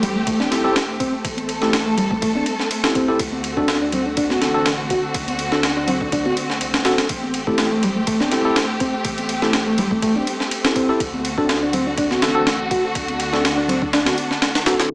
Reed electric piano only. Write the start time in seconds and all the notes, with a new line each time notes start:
0.02 G3
0.15 A3
0.27 A3
0.40 D4
1.00 C4
1.62 A3
1.86 A3
1.97 G3
2.11 A3
2.22 A3
2.35 D4
2.95 C4
3.57 D4
3.82 D4
3.93 C4
4.06 D4
4.17 D4
4.30 F#4
4.91 F#4
5.53 D4
5.77 D4
5.88 C4
6.01 D4
6.12 D4
6.25 F#4
6.85 F#4
7.47 A3
7.72 A3
7.83 G3
7.96 A3
8.07 A3
8.21 D4
8.81 C4
9.42 A3
9.67 A3
9.78 G3
9.91 A3
10.03 A3
10.16 D4
10.76 C4
11.38 D4
11.62 D4
11.74 C4
11.87 D4
11.98 D4
12.11 F#4
12.71 F#4
13.33 D4
13.57 D4
13.69 C4
13.82 D4
13.93 D4
14.06 F#4
14.66 F#4